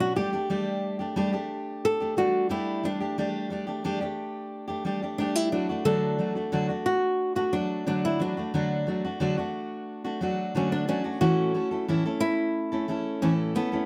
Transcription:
Already playing: B2 F#3 C#4 D4 F#4
0.00 F#4
0.16 G3 A3 D4 G4
0.33 A3 D4 G4
0.50 G3 A3 D4 G4
0.99 A3 D4 G4
1.16 G3 A3 D4 G4
1.33 A3 D4 G4
1.85 A4
2.00 A3 D4 G4
2.17 G3 A3 D4 F#4
2.49 G3 A3 D4 E4 G4
2.83 G3 A3 D4 G4
3.00 A3 D4 G4
3.18 G3 A3 D4 G4
3.50 G3 A3 D4 G4
3.67 A3 D4 G4
3.84 G3 A3 D4 G4
4.01 A3 D4 G4
4.68 A3 D4 G4
4.85 G3 A3 D4 G4
5.02 A3 D4 G4
5.18 G3 A3 D4 G4
5.35 E4
5.52 F#3 A3 D4 F#4
5.69 A3 D4 F#4
5.85 D3 F#3 A3 D4 F#4 A4
6.18 F#3 A3 D4 F#4
6.35 A3 D4 F#4
6.52 D3 F#3 A3 D4 F#4
6.69 A3 D4 F#4
6.86 F#4
7.35 A3 D4 F#4
7.52 F#3 A3 D4 F#4
7.86 D3 F#3 A3 D4 F#4
8.05 E4
8.19 F#3 A3 D4 F#4
8.37 A3 D4 F#4
8.54 D3 F#3 A3 D4 F#4
8.87 F#3 A3 D4 F#4
9.05 A3 D4 F#4
9.20 D3 F#3 A3 D4 F#4
9.37 A3 D4 F#4
10.04 A3 D4 F#4
10.21 F#3 A3 D4 F#4
10.55 D3 F#3 A3 C#4 D4 F#4
10.72 D4
10.88 F#3 A3 C#4 D4 F#4
11.04 A3 D4 F#4
11.21 A2 E3 A3 C#4 E4 F#4 A4
11.54 A3 C#4 E4 A4
11.71 A3 C#4 E4 A4
11.88 A2 E3 A3 C#4 E4 A4
12.05 A3 C#4 E4 A4
12.20 E4
12.72 A3 C#4 E4 A4
12.88 A3 C#4 E4 A4
13.22 A2 E3 A3 C#4 E4 A4
13.55 A3 B3 C#4 E4 A4
13.72 A3 C#4 E4 A4

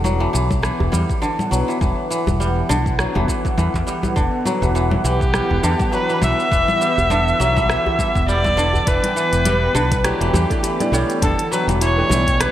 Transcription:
Already playing: E1 D3 E3 B3 F#5
0.04 F#3, low conga, shaker
0.20 E3
0.33 B1 E3, djembe slap, shaker
0.51 kick, low conga, shaker
0.63 E3, cross-stick, shaker
0.80 E1, djembe bass
0.92 E2 G3, djembe tone, low conga, shaker
1.09 kick, shaker
1.22 D3, djembe tone, shaker
1.39 low conga, shaker
1.51 B1 F#3, shaker
1.68 E3, shaker
1.81 E1 E3, kick, low conga, shaker
2.10 E3, shaker
2.27 E1, djembe bass, low conga, shaker
2.40 G3, djembe tone, shaker
2.69 B1 D3, djembe slap, djembe tone, low conga, shaker
2.86 kick, shaker
2.99 F#3, cross-stick, shaker
3.15 E1 E3, low conga, djembe bass
3.28 E3, kick, djembe tone, shaker
3.45 kick, djembe slap, shaker
3.58 E2 E3, low conga, shaker
3.74 E2, kick, djembe slap, shaker
3.87 G3, djembe slap, shaker
4.03 djembe bass, low conga, shaker
4.16 E1 D3, kick, shaker
4.45 F#3, low conga, shaker
4.62 E1 E3, djembe bass, shaker
4.75 E3, shaker
4.91 low conga
5.04 B1 E3 G4, djembe slap, shaker
5.21 kick, shaker
5.34 G3, cross-stick, low conga, shaker
5.50 E1, djembe bass
5.63 E2 D3, djembe tone, shaker
5.79 kick, low conga, shaker
5.92 F#3 B4, djembe tone, shaker
6.09 E3, shaker
6.22 B1 E3 E5, low conga, shaker
6.40 shaker
6.51 E1 E3, kick, shaker
6.68 low conga, shaker
6.81 G3, shaker
6.98 E1, djembe bass, shaker
7.10 D3, djembe tone, low conga, shaker
7.28 shaker
7.40 B1 F#3, djembe slap, djembe tone, shaker
7.57 E3, kick, low conga, shaker
7.70 E3, cross-stick, shaker
7.86 djembe bass
7.99 E3, kick, djembe tone, low conga, shaker
8.15 E1, kick, djembe slap, shaker
8.28 G3 D5, shaker
8.44 kick, djembe slap, low conga, shaker
8.57 D3, djembe slap, shaker
8.74 djembe bass, shaker
8.87 E1 E3 B3 B4 G5, kick, closed hi-hat, shaker
9.04 closed hi-hat, low conga
9.16 E3, shaker
9.33 E1, closed hi-hat, shaker
9.45 G3, closed hi-hat, low conga, shaker
9.75 B1 D3, djembe slap, djembe bass, shaker
9.92 kick, closed hi-hat, low conga, shaker
10.04 E3 F#3 A3 D4 G4 B4, cross-stick, closed hi-hat, shaker
10.21 E1 E3, closed hi-hat
10.33 E2 E3, djembe tone, djembe bass, low conga, shaker
10.50 E3 A3 D4 G4 D5, kick, closed hi-hat, shaker
10.63 E3, closed hi-hat, djembe tone, shaker
10.79 E3 A3 D4 G4 D5, closed hi-hat, low conga, shaker
10.92 B1 E3 G3 A3 D4 G4 C#5, shaker
11.10 closed hi-hat, shaker
11.21 E1 D3 E3 A3 D4 G4 A4 B4, kick, closed hi-hat, low conga, shaker
11.39 closed hi-hat
11.52 F#3 B4, shaker
11.67 E1 E3, closed hi-hat, low conga, shaker
11.81 E3 C#5, closed hi-hat, djembe tone, shaker
11.96 E3 A3 D4 G4 B4
12.08 B1 E3 A3 D4 G5, djembe slap, djembe tone, djembe bass, low conga, shaker
12.13 D5
12.27 kick, closed hi-hat, shaker
12.40 G3 B4, cross-stick, closed hi-hat, shaker

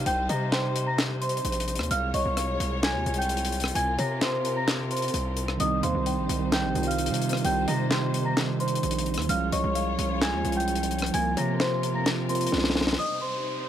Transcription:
Already playing: C3 G3 D#4 C5
0.06 C2 G5 G6, closed hi-hat
0.29 C3 D#5 A#5 A#6, closed hi-hat
0.52 C5 G5 C6, snare, clap
0.76 closed hi-hat
0.87 A#5 A#6
0.99 snare, clap
1.21 C5 C6, closed hi-hat
1.29 closed hi-hat
1.37 closed hi-hat
1.45 A#1, closed hi-hat
1.52 closed hi-hat
1.60 closed hi-hat
1.68 closed hi-hat
1.75 D#2, cross-stick, closed hi-hat
1.83 closed hi-hat
1.91 C2 G#3 F4 C#5 F5 F6, closed hi-hat
2.14 C2 C#5 D#5 C#6, closed hi-hat
2.25 C2
2.37 F5, cross-stick, closed hi-hat
2.60 C2, closed hi-hat
2.83 G#5 G#6, snare, clap
2.95 D#2
3.06 C2, closed hi-hat
3.14 G5, closed hi-hat
3.18 G6, closed hi-hat
3.29 closed hi-hat
3.37 closed hi-hat
3.45 closed hi-hat
3.52 closed hi-hat
3.60 cross-stick, closed hi-hat
3.68 closed hi-hat
3.75 C2 C4 A#4 G#5 G#6, closed hi-hat
3.98 C3 C#5 A#5 A#6, closed hi-hat
4.21 C5 C6, snare, clap
4.45 closed hi-hat
4.56 A#5 A#6
4.68 snare, clap
4.91 C5 C6, closed hi-hat
4.97 closed hi-hat
5.02 closed hi-hat
5.08 closed hi-hat
5.14 C2, closed hi-hat
5.37 closed hi-hat
5.48 cross-stick
5.57 C2 D#3 G3 C4 D#4 C5 D#5 D#6, closed hi-hat
5.63 D#4
5.83 D#2 C5 F5 C6, closed hi-hat
5.95 C2
6.06 G5, closed hi-hat
6.18 A#1
6.29 C2, closed hi-hat
6.38 D#3 G3 C4
6.44 D#4
6.52 G5 G6, snare, clap
6.64 A#1
6.73 C2 D#3 G3 C4, closed hi-hat
6.78 F4
6.83 F5, closed hi-hat
6.88 F6, closed hi-hat
6.98 closed hi-hat
7.06 C3, closed hi-hat
7.14 closed hi-hat
7.22 closed hi-hat
7.29 cross-stick, closed hi-hat
7.37 closed hi-hat
7.42 C2 D#3 G3 C4 G5 G6, closed hi-hat
7.48 D#4
7.68 C3 D#5 A#5 A#6, closed hi-hat
7.76 D#3 G3 C4
7.82 D#4
7.90 C5 G5 C6, snare, clap
8.14 closed hi-hat
8.22 D#3 G3 C4 A#5 A#6
8.28 D#4
8.37 snare, clap
8.57 D#3 G3 C4 C5 C6, closed hi-hat
8.63 D#4
8.68 closed hi-hat
8.75 closed hi-hat
8.83 A#1, closed hi-hat
8.91 closed hi-hat
8.99 closed hi-hat
9.06 closed hi-hat, open hi-hat
9.14 D#2, cross-stick, closed hi-hat
9.22 closed hi-hat
9.26 C2 F3 G#3 C#4 F4 C#5 F5 F6, closed hi-hat
9.32 F4
9.52 C2 C#5 D#5 C#6, closed hi-hat
9.64 C2
9.75 F5, closed hi-hat
9.99 C2, closed hi-hat
10.07 F3 G#3 C#4
10.13 F4
10.21 G#5 G#6, snare, clap
10.33 D#2
10.42 C2 F3 G#3 C#4, closed hi-hat
10.48 F4
10.52 G5, closed hi-hat
10.57 G6, closed hi-hat
10.68 closed hi-hat
10.75 closed hi-hat
10.83 closed hi-hat
10.91 closed hi-hat
10.99 cross-stick, closed hi-hat
11.06 closed hi-hat
11.11 C2 F3 A#3 C4 F4 A#4 G#5 G#6, closed hi-hat
11.17 F4
11.37 C3 C#5 A#5 A#6, closed hi-hat
11.46 F3 A#3 C4
11.52 F4
11.60 C5 C6, cross-stick, snare, clap
11.83 closed hi-hat
11.92 F3 A#3 C4 A#5 A#6
11.98 F4
12.06 snare, clap
12.26 F3 A#3 C4 C5 C6, closed hi-hat
12.32 F4, closed hi-hat
12.41 closed hi-hat
12.47 closed hi-hat
12.52 C2, snare
12.58 snare
12.64 snare
12.70 snare
12.75 snare
12.81 snare
12.87 snare
12.93 snare
12.98 C3 G3 D#4 C5 D#5 D#6, downlifter
13.21 C5 C6

